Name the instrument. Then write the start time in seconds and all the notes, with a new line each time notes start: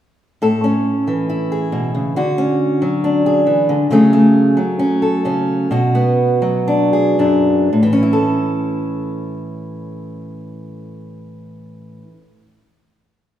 steel-string acoustic guitar
0.42 A2 A4
0.64 C#4
1.08 E3
1.29 E4
1.52 G#4
1.72 B2
1.95 C#3
2.16 D3 F#4
2.38 C#4
2.82 F#3
3.04 D4
3.26 G#4
3.46 E3
3.69 D3
3.90 C#3 F#3 A3 C#4 G#4
4.13 A3
4.57 F#3
4.79 C#4
5.02 A4
5.25 C#3 C#4
5.71 B2 F#4
5.95 B3
6.42 F#3
6.68 D4
6.93 G#4
7.19 F#2 D4
7.73 A2
7.83 E3
7.93 C#4
8.03 E4
8.13 A4